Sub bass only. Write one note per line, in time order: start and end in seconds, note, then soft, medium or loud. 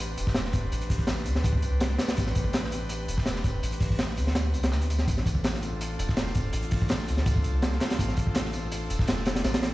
0.00 0.16 A1 loud
0.17 0.70 E1 medium
0.72 1.28 A1 loud
1.26 1.64 D2 loud
1.62 1.98 C2 medium
2.18 3.07 A1 medium
3.08 3.61 E1 medium
3.63 4.18 A1 medium
4.17 4.55 D2 loud
4.53 4.73 C2 medium
4.71 5.07 D2 medium
5.08 5.97 A1 loud
5.99 6.52 E1 medium
6.53 7.10 A1 loud
7.08 7.46 D2 loud
7.44 7.79 C2 loud
7.99 8.89 A1 loud
8.90 9.43 E1 medium
9.44 9.74 A1 loud